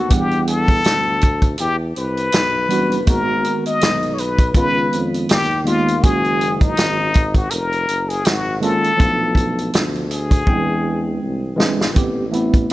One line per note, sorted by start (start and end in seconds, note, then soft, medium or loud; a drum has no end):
0.00 0.13 F#4 medium
0.09 0.81 E2 medium
0.09 1.16 E3 medium
0.09 1.16 G3 medium
0.09 1.17 B3 medium
0.09 1.17 D4 medium
0.09 0.48 G4 loud
0.09 1.18 F#5 medium
0.09 kick loud
0.09 closed hi-hat medium
0.31 closed hi-hat soft
0.47 1.55 A4 loud
0.47 closed hi-hat medium
0.68 kick medium
0.68 closed hi-hat soft
0.84 1.55 D2 medium
0.84 snare medium
0.84 closed hi-hat medium
1.21 kick medium
1.21 closed hi-hat medium
1.42 kick medium
1.42 closed hi-hat medium
1.58 1.94 E2 medium
1.58 1.76 G4 loud
1.58 closed hi-hat medium
1.96 2.31 C2 medium
1.96 3.04 B4 loud
1.96 closed hi-hat medium
2.17 closed hi-hat medium
2.32 2.68 B1 medium
2.32 snare loud
2.32 closed hi-hat medium
2.68 3.05 F#1 medium
2.68 2.97 E3 medium
2.68 2.97 G3 medium
2.68 2.98 B3 medium
2.68 2.98 D4 medium
2.68 2.99 F#4 medium
2.68 closed hi-hat medium
2.92 closed hi-hat medium
3.06 3.53 G#1 medium
3.06 4.13 D#3 medium
3.06 4.13 G#3 medium
3.06 4.13 A#3 medium
3.06 4.14 B3 medium
3.06 4.14 F#4 medium
3.06 3.62 A#4 loud
3.06 kick loud
3.06 closed hi-hat loud
3.44 closed hi-hat medium
3.66 4.15 D#5 loud
3.66 closed hi-hat medium
3.81 4.52 B1 medium
3.81 snare loud
3.81 closed hi-hat loud
4.03 closed hi-hat soft
4.14 4.21 C#5 medium
4.18 4.56 B4 medium
4.18 closed hi-hat medium
4.39 kick medium
4.39 closed hi-hat medium
4.53 4.90 C#2 medium
4.53 5.45 D#3 medium
4.53 5.46 G#3 medium
4.53 5.47 B3 medium
4.53 5.46 C#4 medium
4.53 5.47 F4 medium
4.53 5.01 B4 loud
4.53 kick loud
4.53 closed hi-hat medium
4.93 5.28 F2 medium
4.93 closed hi-hat medium
5.14 closed hi-hat soft
5.29 6.00 D#2 medium
5.29 5.69 G4 loud
5.29 snare loud
5.29 closed hi-hat loud
5.51 closed hi-hat soft
5.64 5.93 D#3 medium
5.64 5.93 G#3 medium
5.64 5.94 A#3 medium
5.64 5.94 B3 medium
5.64 6.05 F4 medium
5.64 5.95 F4 medium
5.64 closed hi-hat medium
5.88 closed hi-hat medium
6.01 6.74 F#1 medium
6.01 7.08 D#3 medium
6.01 7.09 G#3 medium
6.01 7.09 A#3 medium
6.01 7.10 C#4 medium
6.01 6.64 G#4 loud
6.01 kick loud
6.01 closed hi-hat medium
6.05 7.10 F#4 medium
6.24 closed hi-hat soft
6.41 closed hi-hat medium
6.61 7.35 D#4 loud
6.61 kick loud
6.61 closed hi-hat soft
6.77 7.48 G#1 medium
6.77 snare loud
6.77 closed hi-hat loud
7.14 kick loud
7.14 closed hi-hat medium
7.35 7.52 F#4 medium
7.35 kick medium
7.35 closed hi-hat soft
7.51 7.86 F1 medium
7.51 8.11 A#4 loud
7.51 closed hi-hat medium
7.72 closed hi-hat soft
7.89 8.27 F#1 medium
7.89 closed hi-hat medium
8.09 8.27 G#4 medium
8.09 closed hi-hat medium
8.25 8.74 G#1 medium
8.25 8.62 F#4 loud
8.25 snare loud
8.25 closed hi-hat medium
8.60 8.89 D#3 medium
8.60 8.90 G#3 medium
8.60 8.90 A#3 medium
8.60 8.91 C#4 medium
8.60 8.91 F4 medium
8.60 9.81 A4 loud
8.60 closed hi-hat medium
8.84 closed hi-hat soft
8.97 9.70 B1 medium
8.97 10.05 F3 medium
8.97 10.05 A3 medium
8.97 10.06 B3 medium
8.97 10.06 D4 medium
8.97 10.06 F4 medium
8.97 kick loud
8.97 closed hi-hat medium
9.35 kick medium
9.35 closed hi-hat medium
9.58 closed hi-hat soft
9.73 10.44 D2 medium
9.73 snare loud
9.73 closed hi-hat loud
9.95 closed hi-hat soft
10.11 11.18 G#4 medium
10.11 closed hi-hat medium
10.31 kick medium
10.31 closed hi-hat medium
10.46 11.18 E2 loud
10.46 11.38 E3 medium
10.46 10.55 G3 medium
10.46 11.39 C4 medium
10.46 11.39 D4 medium
10.46 11.40 G5 medium
10.46 kick medium
10.53 11.41 G#3 medium
11.22 11.61 C2 medium
11.56 11.94 G1 medium
11.56 11.85 E3 medium
11.56 11.86 G#3 medium
11.56 11.86 C4 medium
11.56 11.87 D4 medium
11.56 11.87 G#4 loud
11.56 snare loud
11.81 snare medium
11.94 12.67 A1 medium
11.94 12.23 E3 medium
11.94 12.23 A3 medium
11.94 12.24 B3 medium
11.94 12.24 C4 medium
11.94 12.25 G4 medium
11.94 kick loud
11.94 closed hi-hat medium
12.31 12.73 E3 medium
12.31 12.73 A3 medium
12.31 12.73 B3 medium
12.31 12.73 C4 medium
12.31 12.73 E4 medium
12.31 closed hi-hat medium
12.54 kick medium
12.54 closed hi-hat soft